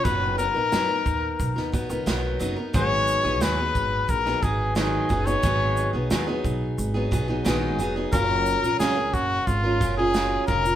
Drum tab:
SH |x-x-x-x-x-xxx-x-|x-x-x-x-x-x-x-xx|x-x-x-x-x-x-x-x-|x-xxx-x-x-x-x-xx|
SD |----o----o--o---|----o----o--o---|----o-------o---|----o-------o---|
BD |o-----o-o-o-----|o-----o-o-o---o-|o-----o---o-----|o-----o-o-o---o-|